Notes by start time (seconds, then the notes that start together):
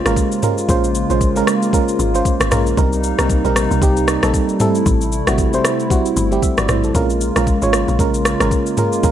Already playing: C#3 G#3 A#3 C#4 F4 G4 A#4 C5
0.05 G#1 G#3 C#4 F4 A#4, cross-stick, shaker
0.16 kick, shaker
0.32 shaker
0.42 G#3 C#4 F4 A#4, mid tom, shaker
0.58 shaker
0.68 A#1 G#3 C#4 F4 C5, kick, shaker
0.84 shaker
0.95 shaker
1.10 A#1 G#3 C#4 F4 C5, shaker
1.21 kick, shaker
1.36 G#3 C#4 F4 A#4, shaker
1.47 cross-stick, shaker
1.62 shaker
1.73 G#3 C#4 F4 A#4, kick, shaker
1.88 shaker
1.99 G#1, shaker
2.14 G#3 C#4 F4 C5, shaker
2.25 kick, shaker
2.40 G#1, cross-stick, shaker
2.51 A#1 G#3 C#4 F4 A#4, cross-stick, mid tom, shaker
2.67 shaker
2.77 C2 C3 G3 C4 D#4 A#4, kick, shaker
2.93 shaker
3.04 shaker
3.18 C2 G3 C4 D#4 A#4, cross-stick, shaker
3.30 kick, shaker
3.44 A#1 G3 C4 D#4 A#4, shaker
3.56 cross-stick, shaker
3.71 C2, shaker
3.82 C2 G3 C4 D#4 G4, kick, shaker
3.97 shaker
4.08 cross-stick, shaker
4.23 A#1 G3 C4 D#4 A4, cross-stick, shaker
4.34 kick, shaker
4.49 shaker
4.60 G3 A3 C4 E4 A4, mid tom, shaker
4.75 shaker
4.86 A1, kick, shaker
5.01 shaker
5.12 shaker
5.27 A1 G3 C4 E4 F#4, cross-stick, shaker
5.38 kick, shaker
5.53 G3 C4 E4 C5, shaker
5.65 cross-stick, shaker
5.80 shaker
5.90 G3 C4 E4 F#4, kick, shaker
6.06 shaker
6.16 G1, shaker
6.31 G3 C4 E4 G4, shaker
6.42 G4 E5, kick, shaker
6.58 G1 F#4 D5, cross-stick, shaker
6.69 A1 E4 C5, cross-stick, mid tom, shaker
6.84 C4 A4, shaker
6.94 A#1 C#3 G#3 A#3 C#4 F4 A#4, kick, shaker
7.10 shaker
7.21 shaker
7.36 A#1 G#3 C#4 F4 A#4, cross-stick, shaker
7.47 kick, shaker
7.62 G#1 G#3 C#4 F4 C#5, shaker
7.73 cross-stick, shaker
7.88 A#1, shaker
7.99 A#1 G#3 C#4 F4 A#4, kick, shaker
8.14 shaker
8.25 cross-stick, shaker
8.40 G#1 G#3 C#4 F4 A#4, cross-stick, shaker
8.51 kick, shaker
8.66 shaker
8.77 G#3 C#4 F4 A#4, mid tom, shaker
8.92 shaker
9.03 A#1 G#3 C#4 F4 A#4, kick, shaker